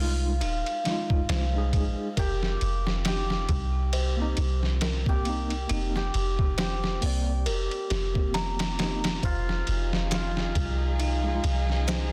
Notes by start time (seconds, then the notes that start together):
Already playing: C2 G#3 F4 G#4
0.00 D#4 F4
0.41 D#1 D#4, ride
0.66 ride
0.84 G#3 D#4, snare, ride
0.89 F4
1.10 kick
1.29 C2 C5, snare, ride
1.53 G#3 D#4
1.58 G#4
1.73 A#1, kick, ride
2.17 F1 G4 A#4, kick, ride
2.43 snare
2.61 F1, ride
2.87 snare
3.05 D#4 G4, snare, ride
3.30 snare
3.49 C2, kick, ride
3.93 C5, ride
4.17 A#3 C4
4.22 D#4
4.37 C2, ride
4.63 snare
4.81 A#4, snare, ride
5.05 A#3 C4 G4, kick
5.10 G4
5.24 A#3 C4, ride
5.29 D#4
5.50 ride
5.67 F1 A#3 C4 D#4, ride
5.73 D#4
5.96 G4, snare
6.14 F1, ride
6.39 kick
6.58 G4 C5, snare, ride
6.84 snare
7.01 C2 A#3 C4, open hi-hat
7.06 D5
7.46 F1 A#4, ride
7.71 ride
7.90 F1 G4, snare, ride
8.14 A#3 C4, kick
8.19 G4
8.34 A#5, snare, ride
8.59 snare, ride
8.78 A#3 C4 G4, snare, ride
8.83 D#4
9.04 snare, ride
9.22 F1 F3 D#4 F4 G#4 C5, kick, ride
9.49 snare
9.67 F1, ride
9.93 snare
10.11 F4 G#4, snare, ride, maracas
10.37 snare
10.55 C2, kick, ride
10.99 D#4, ride
11.24 G#3 D#4
11.28 F4
11.44 C2, ride
11.70 snare
11.88 C5, snare, ride, maracas